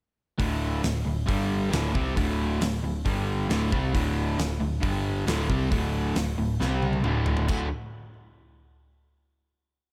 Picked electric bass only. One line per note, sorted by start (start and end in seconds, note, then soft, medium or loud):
0.39 0.81 D1 medium
0.84 1.04 D1 medium
1.06 1.27 D1 medium
1.29 1.70 G1 medium
1.73 1.93 D1 medium
1.95 2.15 C2 medium
2.17 2.58 D1 loud
2.61 2.82 D1 medium
2.83 3.04 D1 medium
3.06 3.47 G1 medium
3.50 3.70 D1 medium
3.72 3.92 C2 medium
3.94 4.35 D1 medium
4.38 4.58 D1 medium
4.61 4.81 D1 medium
4.83 5.24 G1 medium
5.26 5.47 D1 medium
5.49 5.70 C2 medium
5.72 6.13 D1 medium
6.16 6.36 D1 medium
6.37 6.58 D1 medium
6.60 7.01 C2 medium
7.05 7.46 D1 medium
7.49 7.70 D1 medium